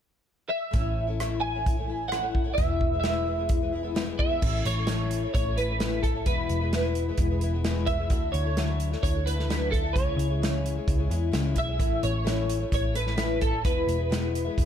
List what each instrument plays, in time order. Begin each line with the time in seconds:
0.49 clean electric guitar E5
0.71 picked electric bass A1, twelve-string acoustic guitar A2 E3 A3 C#4 E4, kick, closed hi-hat
1.07 twelve-string acoustic guitar A3 C#4 E4
1.20 twelve-string acoustic guitar A2 E3 A3 C#4 E4, cross-stick, closed hi-hat
1.40 twelve-string acoustic guitar E3 A3, clean electric guitar G#5
1.45 twelve-string acoustic guitar C#4 E4
1.55 twelve-string acoustic guitar A3 C#4 E4
1.66 kick, closed hi-hat
1.77 twelve-string acoustic guitar A3 C#4 E4
1.87 twelve-string acoustic guitar E3 A3 C#4 E4
2.08 twelve-string acoustic guitar A2 E3 A3 E4, clean electric guitar F#5, cross-stick, closed hi-hat
2.13 twelve-string acoustic guitar C#4
2.21 twelve-string acoustic guitar A3 C#4 E4
2.35 kick
2.44 twelve-string acoustic guitar A3 C#4 E4
2.54 twelve-string acoustic guitar E2 B2, clean electric guitar E5
2.58 picked electric bass E1, twelve-string acoustic guitar E3 G#3 B3 E4, kick, closed hi-hat
2.81 kick
2.93 twelve-string acoustic guitar E3 G#3 B3 E4
3.00 clean electric guitar E5, closed hi-hat
3.04 twelve-string acoustic guitar E2 B2 E3 G#3 B3 E4, snare
3.26 twelve-string acoustic guitar E3 G#3 B3 E4
3.38 twelve-string acoustic guitar E3 G#3 B3 E4
3.49 kick, closed hi-hat
3.62 twelve-string acoustic guitar E3 G#3 B3 E4
3.73 twelve-string acoustic guitar E3 G#3 B3 E4
3.83 twelve-string acoustic guitar E3 G#3 B3 E4
3.95 twelve-string acoustic guitar E2 B2 E3 G#3 B3 E4, snare, closed hi-hat
4.05 twelve-string acoustic guitar E3 G#3 B3 E4
4.19 clean electric guitar E5, kick
4.28 twelve-string acoustic guitar E3 G#3 B3 E4
4.41 picked electric bass A1, twelve-string acoustic guitar A2 E3 A3 C#4 E4, kick, crash
4.65 picked electric bass A1, clean electric guitar C#5, closed hi-hat
4.77 twelve-string acoustic guitar A3 C#4 E4
4.87 twelve-string acoustic guitar A2 E3 A3 C#4 E4, snare, closed hi-hat
5.11 closed hi-hat
5.23 twelve-string acoustic guitar A3 C#4 E4
5.34 picked electric bass A1, clean electric guitar C#5, kick, closed hi-hat
5.46 twelve-string acoustic guitar A3 C#4 E4
5.56 twelve-string acoustic guitar E3 A3 C#4 E4, clean electric guitar B4, closed hi-hat
5.69 twelve-string acoustic guitar A3 C#4 E4
5.79 twelve-string acoustic guitar A2 E3 A3 C#4 E4, snare, closed hi-hat
6.03 twelve-string acoustic guitar E3 A3 C#4, clean electric guitar A4, kick, closed hi-hat
6.07 twelve-string acoustic guitar E4
6.15 twelve-string acoustic guitar A3 C#4 E4
6.25 picked electric bass E1, twelve-string acoustic guitar E2 B2 E3 G#3 B3 E4, clean electric guitar B4, kick, closed hi-hat
6.49 picked electric bass E1, closed hi-hat
6.61 twelve-string acoustic guitar E3 G#3 B3 E4
6.73 twelve-string acoustic guitar E2 B2 E3 G#3 B3 E4, snare, closed hi-hat
6.95 closed hi-hat
7.08 twelve-string acoustic guitar E3 G#3 B3 E4
7.18 picked electric bass E1, kick, closed hi-hat
7.31 twelve-string acoustic guitar E3 G#3 B3 E4
7.41 twelve-string acoustic guitar E3 G#3 B3 E4, closed hi-hat
7.53 twelve-string acoustic guitar E3 G#3 B3 E4
7.64 twelve-string acoustic guitar E2 B2 E3 G#3 B3 E4, snare, closed hi-hat
7.87 twelve-string acoustic guitar E3 G#3, clean electric guitar E5, kick, closed hi-hat
7.91 twelve-string acoustic guitar B3 E4
7.98 twelve-string acoustic guitar E3 G#3 B3 E4
8.09 picked electric bass D2, twelve-string acoustic guitar D3 F#3 A3 D4 E4, kick, closed hi-hat
8.32 picked electric bass D2, clean electric guitar C#5, closed hi-hat
8.44 twelve-string acoustic guitar A3 D4 E4
8.55 twelve-string acoustic guitar D3 F#3 A3 D4 E4, snare, closed hi-hat
8.80 closed hi-hat
8.91 twelve-string acoustic guitar A3 D4 E4, snare
9.03 picked electric bass D2, clean electric guitar C#5, kick, closed hi-hat
9.14 twelve-string acoustic guitar A3 D4 E4
9.25 twelve-string acoustic guitar F#3 A3 D4 E4, clean electric guitar B4, closed hi-hat
9.36 twelve-string acoustic guitar A3 D4 E4, snare
9.48 twelve-string acoustic guitar D3 F#3 A3 D4 E4, snare, closed hi-hat
9.70 twelve-string acoustic guitar F#3 A3 D4 E4, clean electric guitar A4, kick, closed hi-hat
9.83 twelve-string acoustic guitar A3 D4 E4
9.93 picked electric bass C#2, twelve-string acoustic guitar C#3 E3 G#3 C#4 E4, clean electric guitar C#5, kick, closed hi-hat
10.17 picked electric bass C#2, closed hi-hat
10.28 twelve-string acoustic guitar G#3 C#4 E4
10.42 twelve-string acoustic guitar C#3 E3 G#3 C#4 E4, snare, closed hi-hat
10.66 closed hi-hat
10.75 twelve-string acoustic guitar G#3 C#4 E4
10.88 picked electric bass C#2, kick, closed hi-hat
10.98 twelve-string acoustic guitar G#3 C#4 E4
11.10 picked electric bass E2, twelve-string acoustic guitar E3 G#3 C#4 E4, closed hi-hat
11.32 picked electric bass C#2, twelve-string acoustic guitar C#3 E3 G#3 C#4 E4, snare, closed hi-hat
11.55 picked electric bass B1, twelve-string acoustic guitar E3 G#3 C#4 E4, clean electric guitar E5, kick, closed hi-hat
11.67 twelve-string acoustic guitar G#3 C#4 E4
11.78 picked electric bass A1, twelve-string acoustic guitar A2 E3 A3 C#4 E4, kick, closed hi-hat
12.03 picked electric bass A1, clean electric guitar C#5, closed hi-hat
12.12 twelve-string acoustic guitar A3 C#4 E4
12.24 twelve-string acoustic guitar A2 E3 A3 C#4 E4, snare, closed hi-hat
12.50 closed hi-hat
12.59 twelve-string acoustic guitar A3 C#4 E4
12.72 picked electric bass A1, clean electric guitar C#5, kick, closed hi-hat
12.82 twelve-string acoustic guitar A3 C#4 E4
12.93 twelve-string acoustic guitar E3 A3 C#4 E4, clean electric guitar B4, closed hi-hat
13.06 twelve-string acoustic guitar A3 C#4 E4, snare
13.16 twelve-string acoustic guitar A2 E3 A3 C#4 E4, snare, closed hi-hat
13.39 twelve-string acoustic guitar E3 A3 C#4 E4, clean electric guitar A4, kick, closed hi-hat
13.51 twelve-string acoustic guitar A3 C#4 E4
13.64 picked electric bass E1, twelve-string acoustic guitar E2 B2 E3 G#3 B3 E4, clean electric guitar B4, kick, closed hi-hat
13.87 picked electric bass E1, closed hi-hat
13.98 twelve-string acoustic guitar E3 G#3 B3 E4
14.10 twelve-string acoustic guitar E2 B2 E3 G#3 B3 E4, snare, closed hi-hat
14.35 closed hi-hat
14.45 twelve-string acoustic guitar E3 G#3 B3 E4
14.58 picked electric bass E1, kick, closed hi-hat